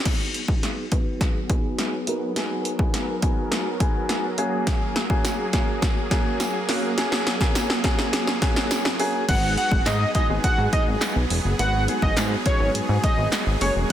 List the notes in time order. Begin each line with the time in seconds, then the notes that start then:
0.05 F#3 B3 D#4 F#4 G#4, kick, snare, closed hi-hat, crash
0.34 closed hi-hat
0.48 B3 D#4 F#4 G#4, kick
0.63 snare, closed hi-hat
0.92 B3 D#4 F#4 B4, kick, closed hi-hat
1.21 kick, snare, closed hi-hat
1.50 B3 D#4 F#4 G#4, kick, closed hi-hat
1.79 snare, closed hi-hat
2.07 B3 D#4 F#4 A#4, closed hi-hat
2.36 B3 D#4 F#4 G#4 A#4, snare, closed hi-hat
2.65 closed hi-hat
2.79 B3 D#4 F#4 G#4, kick
2.94 snare, closed hi-hat
3.22 B3 D#4 F#4 G#4, kick, closed hi-hat
3.52 snare, closed hi-hat
3.80 B3 D#4 F#4 G#4, kick, closed hi-hat
4.09 snare, closed hi-hat
4.38 A#3 C#4 F#4 G#4, closed hi-hat
4.67 kick, snare, closed hi-hat
4.96 snare, closed hi-hat
5.10 A#3 C#4 F#4 G#4, kick
5.25 snare, closed hi-hat, tambourine
5.53 A#3 C#4 F#4 G#4, kick, snare, closed hi-hat
5.82 kick, snare, closed hi-hat
6.11 A#3 C#4 F#4 G#4, kick, snare, closed hi-hat
6.40 snare, closed hi-hat, tambourine
6.69 A#3 C#4 F#4 A#4, snare, open hi-hat
6.98 A#3 C#4 F#4 G#4, snare, closed hi-hat
7.12 snare
7.27 snare, closed hi-hat
7.41 A#3 C#4 F#4 G#4, kick, snare
7.55 snare, closed hi-hat, tambourine
7.70 snare
7.84 A#3 C#4 F#4 G#4, kick, snare, closed hi-hat
7.99 snare
8.13 snare, closed hi-hat
8.27 snare
8.42 A#3 C#4 F#4 G#4, kick, snare, closed hi-hat
8.56 snare
8.71 snare, closed hi-hat, tambourine
8.85 snare
8.99 A#3 C#4 F#4 G#4, open hi-hat
9.28 G#1 F#3 G#3 B3 D#4 F#4 G#4 F#5, kick, closed hi-hat, crash
9.57 F#5, closed hi-hat
9.72 G#1, kick
9.86 G#2 D#5, snare, clap, closed hi-hat, tambourine
10.15 G#3 B3 D#4 F#4 G#4 D#5, kick, closed hi-hat
10.29 G#1 G#3 B3 D#4 F#4 G#4
10.44 G#2 F#5, kick, closed hi-hat
10.58 G#2
10.73 D#5, kick, closed hi-hat
10.87 G#1
11.01 snare, clap, closed hi-hat, tambourine
11.16 B1
11.30 E1, open hi-hat
11.45 F#1
11.59 G#1 G#3 B3 D#4 F#4 B4 F#5, closed hi-hat
11.88 G#3 B3 D#4 F#4 G#4, closed hi-hat
12.02 G#1 D#5, kick
12.17 G#2, snare, clap, closed hi-hat, tambourine
12.46 G#3 B3 D#4 F#4 G#4 C#5, kick, closed hi-hat
12.60 G#1
12.75 G#2, closed hi-hat
12.89 G#2
13.04 D#5, kick, closed hi-hat
13.18 G#1
13.32 snare, clap, closed hi-hat, tambourine
13.47 G#1
13.61 F#1 G#3 A#3 C#4 F#4 G#4 C#5, open hi-hat
13.76 E1